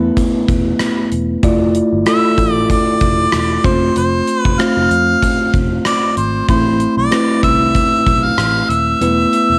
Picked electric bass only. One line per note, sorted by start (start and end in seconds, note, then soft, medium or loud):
0.48 0.72 E1 medium
1.12 1.36 E1 medium
1.43 1.80 F1 medium
1.93 2.03 G1 medium
2.38 2.75 A1 medium
3.01 3.25 F1 medium
3.34 3.57 E1 medium
3.64 3.88 F1 medium
3.97 4.20 F1 medium
4.45 4.56 F1 medium
4.77 4.87 F1 medium
4.90 5.14 F2 medium
5.54 5.77 F1 medium
6.17 6.41 G#1 medium
6.49 6.85 A1 medium
6.97 7.08 B1 medium
7.43 7.80 C2 medium
8.07 8.30 B1 medium
8.38 8.61 A1 medium
8.69 8.93 D#1 medium
9.01 9.25 E1 medium
9.50 9.59 E1 medium